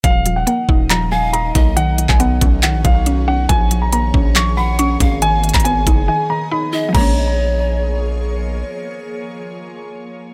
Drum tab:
CC |--------------------------------|--------------------------------|--------------------------------|--------------------------------|
HH |x---x---x-------x-------x---x---|x---x---x---x---x---x---x-------|x---x---x-------x-------x---x---|x---xxxxx---x-------------------|
CP |----------------x---------------|------x---------x---------------|----------------x---------------|------x-------------------------|
BD |o-----------o---------------o---|------o-----o-------o-----------|o-----------o---------------o---|------o-----o-------------------|

CC |x-------------------------------|--------------------------------|
HH |--------------------------------|--------------------------------|
CP |--------------------------------|--------------------------------|
BD |o-------------------------------|--------------------------------|